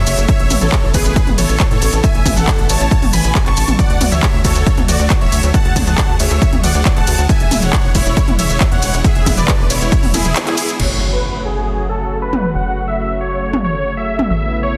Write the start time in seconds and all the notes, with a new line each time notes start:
Already playing: C#3 F#3 A3 F#4 C#5 E5
0.07 F#1, open hi-hat, ride, maracas
0.18 F#1, closed hi-hat, maracas
0.28 B3 E4 C#5 E5, kick, closed hi-hat, maracas
0.40 A1, closed hi-hat
0.50 A1, open hi-hat, mid tom, ride, maracas
0.61 A1 A4 C#5, closed hi-hat, maracas
0.72 kick, clap, closed hi-hat, maracas
0.83 A1
0.94 A1 G#4 B4, kick, open hi-hat, ride, maracas
1.05 A1, closed hi-hat, maracas
1.16 kick, closed hi-hat, maracas
1.27 A1, closed hi-hat, mid tom
1.38 A1 A4 C#5, open hi-hat, ride, maracas
1.49 A1, closed hi-hat, maracas
1.59 kick, clap, closed hi-hat, maracas
1.71 A2 A4 C#5, closed hi-hat
1.82 A1, open hi-hat, ride, maracas
1.92 A1, closed hi-hat, maracas
2.03 E5 G#5, kick, closed hi-hat, maracas
2.15 A1, closed hi-hat
2.26 A1, kick, open hi-hat, mid tom, ride, maracas
2.37 A1 A4 F#5, closed hi-hat, maracas
2.48 kick, clap, closed hi-hat, maracas
2.58 A1, closed hi-hat
2.69 A1 C#5 A5, open hi-hat, ride, maracas
2.80 A1, closed hi-hat, maracas
2.91 kick, closed hi-hat, maracas
3.02 A1, open hi-hat, mid tom
3.13 A1 G#5 B5, open hi-hat, ride, maracas
3.24 A1, closed hi-hat, maracas
3.35 kick, clap, closed hi-hat, maracas
3.46 A1 A5 C#6, clap, closed hi-hat
3.57 A1, open hi-hat, ride, maracas
3.68 A1, closed hi-hat, mid tom, maracas
3.79 D3 F#3 A3 F#4 D5 F#5, kick, closed hi-hat, maracas
3.90 D2, closed hi-hat
4.01 D2, open hi-hat, mid tom, ride, maracas
4.12 D2 C#5 E5, closed hi-hat, maracas
4.22 kick, clap, closed hi-hat, maracas
4.34 D2
4.44 D2 A4 C#5, kick, open hi-hat, ride, maracas
4.55 D2, closed hi-hat, maracas
4.66 kick, closed hi-hat, maracas
4.77 D2, closed hi-hat, mid tom
4.88 D2 F#4 D5, open hi-hat, ride, maracas
4.99 D2, closed hi-hat, maracas
5.10 kick, clap, closed hi-hat, maracas
5.21 D1 C#5 E5, closed hi-hat
5.32 D2, open hi-hat, ride, maracas
5.43 D2, closed hi-hat, maracas
5.54 G#4 F#5 A5, kick, closed hi-hat, maracas
5.65 D2, closed hi-hat
5.76 D2, kick, open hi-hat, mid tom, ride, maracas
5.87 D2 F#5 A5, closed hi-hat, maracas
5.97 kick, clap, closed hi-hat, maracas
6.09 D2
6.19 D2 C#5 E5, open hi-hat, ride, maracas
6.30 D2, closed hi-hat, maracas
6.42 kick, closed hi-hat, maracas
6.53 D2, closed hi-hat, mid tom
6.64 D2 D5 F#5, open hi-hat, ride, maracas
6.75 D2, closed hi-hat, maracas
6.85 kick, clap, closed hi-hat, maracas
6.96 D1 F#5 A5, clap, closed hi-hat
7.07 D2, open hi-hat, ride, maracas
7.18 D2, closed hi-hat, maracas
7.29 C#3 E3 G#3 E4 E5 G#5, kick, closed hi-hat, maracas
7.40 E1, closed hi-hat
7.51 E1, open hi-hat, mid tom, ride, maracas
7.62 E1 C#5 F#5, closed hi-hat, maracas
7.73 kick, clap, closed hi-hat, maracas
7.84 E1
7.95 E1 E4 C#5, kick, open hi-hat, ride, maracas
8.06 E1, closed hi-hat, maracas
8.17 kick, closed hi-hat, maracas
8.28 E1, closed hi-hat, mid tom
8.39 E1 C#5 E5, open hi-hat, ride, maracas
8.50 E1, closed hi-hat, maracas
8.61 kick, clap, closed hi-hat, maracas
8.72 E2 C#5 F#5, closed hi-hat
8.82 E1, open hi-hat, ride, maracas
8.94 E1, closed hi-hat, maracas
9.04 D3 B3 G#4 E5, kick, closed hi-hat, maracas
9.15 E1, closed hi-hat
9.26 E1, kick, open hi-hat, mid tom, ride, maracas
9.37 E1 B4 D5, closed hi-hat, maracas
9.48 kick, clap, closed hi-hat, maracas
9.59 E1
9.70 E1 E4 C#5, open hi-hat, ride, maracas
9.81 E1, closed hi-hat, maracas
9.92 kick, closed hi-hat, maracas
10.03 E1, open hi-hat, mid tom
10.14 E1 E4 G#4, open hi-hat, mid tom, ride, maracas
10.25 E1, closed hi-hat, maracas
10.35 clap, closed hi-hat, maracas
10.47 E4 G#4, clap, closed hi-hat
10.57 open hi-hat, ride, maracas
10.69 closed hi-hat, maracas
10.80 F#1 C#3 F#3 A3 F#4 C#5, crash, impact
11.13 B4
11.45 G#4
11.89 A4
12.22 B4
12.33 mid tom
12.55 F#1 F#5
12.88 E5
13.21 C#5
13.53 mid tom
13.64 C#5
13.97 E5
14.19 mid tom
14.30 A1 B3 E4 E5
14.63 C#5